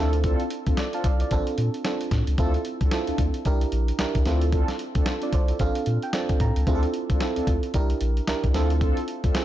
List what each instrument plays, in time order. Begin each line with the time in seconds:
Already playing: analog synth bass D2, analog polysynth C4 D4 F4 A4, fm electric piano C4 E4
0.00 fm electric piano F4 A4
0.13 closed hi-hat
0.24 analog polysynth C4 D4 F4 A4, kick, closed hi-hat
0.40 closed hi-hat
0.50 closed hi-hat
0.66 analog synth bass D2, analog polysynth C4 D4 F4 A4, kick, closed hi-hat
0.77 fm electric piano D5, snare, closed hi-hat
0.93 analog polysynth C4 D4 F4 A4, fm electric piano F5 A5, closed hi-hat
1.04 analog synth bass C2, fm electric piano D5 F5, kick, closed hi-hat
1.20 fm electric piano D5, closed hi-hat
1.31 analog synth bass A#1, fm electric piano C4 D4 F4 A4, kick, closed hi-hat
1.47 closed hi-hat
1.58 analog synth bass A#2, closed hi-hat
1.74 closed hi-hat
1.85 fm electric piano C4 D4 F4 A4, snare, closed hi-hat
2.01 closed hi-hat
2.11 analog synth bass A2, kick, snare, closed hi-hat
2.27 analog synth bass C#2, closed hi-hat
2.38 analog synth bass D2, analog polysynth C4 D4 F4 A4, fm electric piano C4 E4 F4 A4, kick, closed hi-hat
2.54 closed hi-hat
2.65 closed hi-hat
2.81 analog synth bass C2, analog polysynth C4 D4 F4 A4, kick, closed hi-hat
2.91 fm electric piano C4 E4 F4 A4, snare, closed hi-hat
3.07 analog synth bass D2, analog polysynth C4 D4 F4 A4, closed hi-hat
3.18 analog synth bass D2, kick, closed hi-hat
3.34 closed hi-hat
3.45 analog synth bass C2, fm electric piano D4 E4 G4 A#4, kick, closed hi-hat
3.61 closed hi-hat
3.72 analog synth bass A#1, closed hi-hat
3.88 closed hi-hat
3.99 analog synth bass C2, fm electric piano D4 E4 G4 A#4, snare, closed hi-hat
4.15 analog synth bass C2, kick, closed hi-hat
4.25 analog synth bass D2, analog polysynth C4 D4 F4 A4, fm electric piano C4 E4 F4 A4, snare, closed hi-hat
4.42 closed hi-hat
4.52 analog polysynth C4 D4 F4 A4, kick, closed hi-hat
4.68 snare, closed hi-hat
4.79 closed hi-hat
4.95 analog synth bass D2, analog polysynth C4 D4 F4 A4, kick, closed hi-hat
5.06 fm electric piano F4 A4, snare, closed hi-hat
5.22 analog polysynth C4 D4 F4 A4, fm electric piano D5, closed hi-hat
5.33 analog synth bass C2, fm electric piano A4 C5 D5, kick, closed hi-hat
5.48 fm electric piano F4 A4, closed hi-hat
5.59 analog synth bass A#1, fm electric piano C4 D4 F4 A4 F5, kick, closed hi-hat
5.75 closed hi-hat
5.86 analog synth bass A#2, closed hi-hat
6.03 fm electric piano G5, closed hi-hat
6.13 fm electric piano C4 D4 F4 A4 A5, snare, closed hi-hat
6.29 kick, closed hi-hat
6.40 analog synth bass A2, fm electric piano A#5, kick, closed hi-hat
6.56 analog synth bass C#2, closed hi-hat
6.67 analog synth bass D2, analog polysynth C4 D4 F4 A4, fm electric piano C4 E4 F4 G#4, kick, closed hi-hat
6.75 fm electric piano A4
6.83 closed hi-hat
6.94 closed hi-hat
7.10 analog synth bass C2, analog polysynth C4 D4 F4 A4, kick, closed hi-hat
7.21 fm electric piano C4 E4 F4 A4, snare, closed hi-hat
7.36 analog synth bass D2, analog polysynth C4 D4 F4 A4, closed hi-hat
7.47 analog synth bass D2, kick, closed hi-hat
7.63 closed hi-hat
7.74 analog synth bass C2, fm electric piano D4 E4 G4 A#4, kick, closed hi-hat
7.90 closed hi-hat
8.01 analog synth bass A#1, closed hi-hat
8.17 closed hi-hat
8.28 analog synth bass C2, fm electric piano D4 E4 G4 A#4, snare, closed hi-hat
8.44 analog synth bass C2, kick, closed hi-hat
8.54 analog synth bass D2, analog polysynth C4 D4 F4 A4, fm electric piano C4 E4 F4 A4, snare, closed hi-hat
8.70 closed hi-hat
8.81 analog polysynth C4 D4 F4 A4, kick, closed hi-hat
8.97 closed hi-hat
9.08 closed hi-hat
9.24 analog synth bass D2, analog polysynth C4 D4 F4 A4, kick, closed hi-hat
9.35 fm electric piano C4 E4 F4 G#4, snare, closed hi-hat